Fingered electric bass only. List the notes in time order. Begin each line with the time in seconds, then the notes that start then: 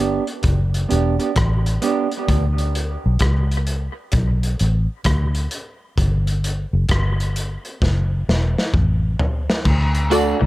Already playing: G1
0.44 F#1
0.92 E1
1.37 A1
2.29 D2
3.06 B1
3.21 C#2
4.13 B1
4.61 A1
5.06 D2
5.98 G1
6.73 F#1
6.90 G1
7.82 F#1
8.29 E1
8.74 A1
9.66 D2
10.42 C#2